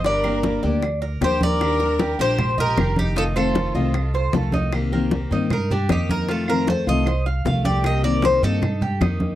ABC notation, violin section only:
X:1
M:4/4
L:1/8
Q:1/4=154
K:Cdor
V:1 name="Violin section"
B3 z3 G B- | B3 G2 G2 E | F F6 z | z8 |
z8 | z8 |]